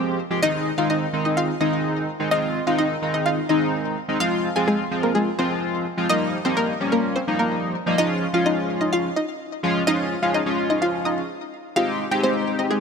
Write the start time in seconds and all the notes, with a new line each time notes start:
Already playing: F3 G#3 C4 G4
0.30 F3 G#3 C4 G4
0.42 D#3 G#3 C4 D#4 D#5
0.78 D#3 G#3 C4 D#4 F4 F5
0.90 D#4 D#5
1.13 D#3 G#3 C4 D#4
1.25 D#4 D#5
1.37 F4 F5
1.60 D#3 G#3 C4 D#4 D#5
2.19 D#3 G#3 C4 D#4
2.31 D#3 G#3 C4 D#4 F4 D#5
2.67 D#3 G#3 C4 D#4 F4 F5
2.78 D#4 D#5
3.02 D#3 G#3 C4 D#4
3.14 D#4 D#5
3.26 F4 F5
3.49 D#3 G#3 C4 D#4 D#5
4.08 D#3 G#3 C4 D#4
4.20 F3 G#3 C4 F4 F5
4.56 F3 G#3 C4 F4 G#4 G#5
4.68 G#3 G#4
4.91 F3 G#3 C4 F4
5.03 A#3 A#4
5.15 G#3 G#4
5.38 F3 G#3 C4 F4 C5
5.97 F3 G#3 C4 F4
6.09 F3 G3 A#3 D#4 D#5
6.45 F3 G3 A#3 C4 D#4 C5
6.57 A#3 A#4
6.80 F3 G3 A#3 C#4
6.92 A#3 A#4
7.16 C4 C5
7.27 F3 G3 A#3 D#4
7.39 A#3 A#4
7.86 F3 G3 A#3 D#4
7.98 F3 G#3 C#4 D#4 F4 D#5
8.33 F3 G#3 C#4 F4 F5
8.46 D#4 D#5
8.81 D#4 D#5
8.93 F4 F5
9.16 D#4 D#5
9.63 F3 G#3 C#4 F4
9.87 F3 G#3 C#4 D#4 F4 D#5
10.22 F3 G#3 C#4 F4 F5
10.34 D#4 D#5
10.46 F3 G#3 C#4 F4
10.70 D#4 D#5
10.82 F4 F5
11.05 D#4 D#5
11.76 G#3 C4 D#4 F4 G4 F5
12.11 G#3 C4 D#4 G4 G5
12.23 C4 C5
12.59 D#4 D#5
12.71 G#3 G#4